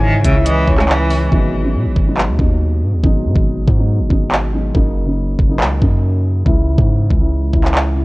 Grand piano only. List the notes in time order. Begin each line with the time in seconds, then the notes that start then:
Already playing: C#3 E3 G#3 E4
0.34 C#3 E3 G#3 E4
0.67 C#3 E3 G#3 E4
1.09 C#3 E3 G#3 E4
1.31 B2 F#3 G#3 D#4
1.63 B2 F#3 G#3 D#4
2.06 B2 F#3 G#3 D#4
2.38 B2 F#3 G#3 D#4
3.02 B2 F#3 G#3 D#4
3.77 B2 F#3 G#3 D#4
4.09 B2 F#3 G#3 D#4
4.52 B2 F#3 G#3 D#4
4.74 C#3 F#3 A#3 D#4
5.06 C#3 F#3 A#3 D#4
5.49 C#3 F#3 A#3 D#4
5.81 C#3 F#3 A#3 D#4
6.45 C#3 E3 G#3 E4
7.20 C#3 E3 G#3 E4
7.52 C#3 E3 G#3 E4
7.95 C#3 E3 G#3 E4